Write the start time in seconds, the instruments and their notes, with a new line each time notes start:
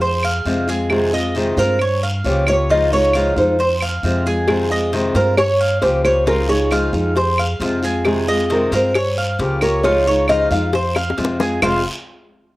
Already playing: upright bass F2, nylon-string guitar G#4
0.01 cuban tres C5, muted steel-string acoustic guitar stroke, long guiro
0.23 cuban tres F5, claves
0.45 upright bass F2, steel-string acoustic guitar C3 F3 G#3 C4 F4, short guiro
0.67 steel-string acoustic guitar G#3 C4 F4, cuban tres G#4, short guiro
0.90 steel-string acoustic guitar C3 D#3 G#3 C4 F4, nylon-string guitar G#4, long guiro, claves
1.13 steel-string acoustic guitar G#3 C4 F4, cuban tres D#5
1.35 steel-string acoustic guitar C3 D#3 G#3 C4 F4, short guiro
1.57 upright bass G2, steel-string acoustic guitar G#3 C4 F4, cuban tres A#4, nylon-string guitar C5, short guiro
1.79 cuban tres C#5, muted steel-string acoustic guitar stroke, long guiro, claves
2.03 cuban tres F5
2.24 upright bass C#2, steel-string acoustic guitar C#3 F3 A#3 F4 G4, nylon-string guitar C#5, short guiro
2.47 steel-string acoustic guitar A#3 F4 G4, cuban tres C#5, nylon-string guitar C#5, short guiro, claves
2.69 steel-string acoustic guitar C#3 F3 G#3 D#4 F4, cuban tres F4, nylon-string guitar D#5, long guiro
2.92 steel-string acoustic guitar G#3 D#4 F4, cuban tres C#5, nylon-string guitar C#5
3.13 steel-string acoustic guitar C#3 F3 G#3 D#4 F4, cuban tres F5, short guiro, claves
3.36 upright bass F2, steel-string acoustic guitar G#3 D#4 F4, nylon-string guitar C5, short guiro
3.59 cuban tres C5, muted steel-string acoustic guitar stroke, long guiro
3.81 cuban tres F5, claves
4.03 upright bass F2, steel-string acoustic guitar C3 F3 G#3 C4 F4, short guiro
4.26 steel-string acoustic guitar G#3 C4 F4, cuban tres G#4, short guiro
4.47 steel-string acoustic guitar C3 D#3 G#3 C4 F4, nylon-string guitar G#4, cowbell, long guiro, claves
4.70 steel-string acoustic guitar G#3 C4 F4, cuban tres D#5
4.92 steel-string acoustic guitar C3 D#3 G#3 C4 F4, cowbell, short guiro
5.15 upright bass G2, steel-string acoustic guitar G#3 C4 F4, cuban tres A#4, nylon-string guitar C5, cowbell, short guiro
5.37 nylon-string guitar C#5, cuban tres C#5, muted steel-string acoustic guitar stroke, cowbell, long guiro, claves
5.61 cuban tres F5
5.81 upright bass C#2, steel-string acoustic guitar C#3 F3 A#3 F4 G4, nylon-string guitar C5, cowbell, short guiro
6.04 steel-string acoustic guitar A#3 F4 G4, nylon-string guitar C5, cuban tres C#5, short guiro, claves
6.26 steel-string acoustic guitar C#3 F3 G#3 D#4 F4, cuban tres F4, nylon-string guitar A#4, cowbell, long guiro
6.49 steel-string acoustic guitar G#3 D#4 F4, nylon-string guitar G#4, cuban tres C#5
6.70 steel-string acoustic guitar C#3 F3 G#3 D#4 F4, cuban tres F5, cowbell, short guiro, claves
6.93 upright bass F2, steel-string acoustic guitar G#3 D#4 F4, short guiro
7.15 cuban tres C5, muted steel-string acoustic guitar stroke, cowbell, long guiro
7.38 cuban tres F5, claves
7.60 upright bass F2, steel-string acoustic guitar C3 F3 G#3 C4 F4, cowbell, short guiro
7.82 steel-string acoustic guitar G#3 C4 F4, cuban tres G#4, short guiro
8.04 steel-string acoustic guitar C3 D#3 G#3 C4 F4, nylon-string guitar G#4, cowbell, long guiro, claves
8.27 steel-string acoustic guitar G#3 C4 F4, cuban tres D#5
8.50 steel-string acoustic guitar C3 D#3 G#3 C4 F4, nylon-string guitar A#4, cowbell, short guiro
8.71 upright bass G2, steel-string acoustic guitar G#3 C4 F4, cuban tres A#4, nylon-string guitar C5, cowbell, short guiro
8.94 cuban tres C#5, muted steel-string acoustic guitar stroke, cowbell, long guiro, claves
9.18 cuban tres F5
9.39 upright bass C#2, steel-string acoustic guitar C#3 F3 A#3 F4 G4, cowbell, short guiro
9.61 steel-string acoustic guitar A#3 F4 G4, nylon-string guitar A#4, cuban tres C#5, short guiro, claves
9.83 steel-string acoustic guitar C#3 F3 G#3 D#4 F4, cuban tres F4, nylon-string guitar C#5, cowbell, long guiro
10.07 steel-string acoustic guitar G#3 D#4 F4, cuban tres C#5
10.28 steel-string acoustic guitar C#3 F3 G#3 D#4 F4, nylon-string guitar D#5, cuban tres F5, cowbell, short guiro, claves
10.50 upright bass F2, steel-string acoustic guitar G#3 D#4 F4, nylon-string guitar F5, short guiro
10.73 cuban tres C5, muted steel-string acoustic guitar stroke, cowbell, long guiro
10.95 cuban tres F5, high bongo, claves
11.10 high bongo
11.17 upright bass F2, steel-string acoustic guitar C3 F3 G#3 C4 F4, cowbell, short guiro
11.25 low bongo
11.39 steel-string acoustic guitar G#3 C4 F4, cuban tres G#4, low bongo, short guiro
11.61 upright bass F1, steel-string acoustic guitar F2 C3 F3 G#3 C4 F4, cuban tres F4 C5 F5, nylon-string guitar F5, low bongo, long guiro, claves